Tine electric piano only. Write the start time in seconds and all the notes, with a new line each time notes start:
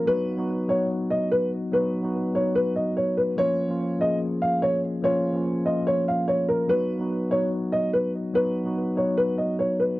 0.06 F#3 B3 D#4 F#4
0.37 F#3 B3 D#4 F#4
0.68 F#3 B3 D#4 F#4
1.72 F#3 B3 D#4 F#4
2.02 F#3 B3 D#4 F#4
2.34 F#3 B3 D#4 F#4
3.37 F3 A#3 C#4 F4
3.68 F3 A#3 C#4 F4
3.99 F3 A#3 C#4 G#4
5.02 F3 A#3 C#4 F4
5.33 F3 A#3 C#4 F4
5.64 F3 A#3 C#4 F4
6.68 F#3 B3 D#4 F#4
6.99 F#3 B3 D#4 F#4
7.30 F#3 B3 D#4 F#4
8.34 F#3 B3 D#4 F#4
8.64 F#3 B3 D#4 F#4
8.96 F#3 B3 D#4 F#4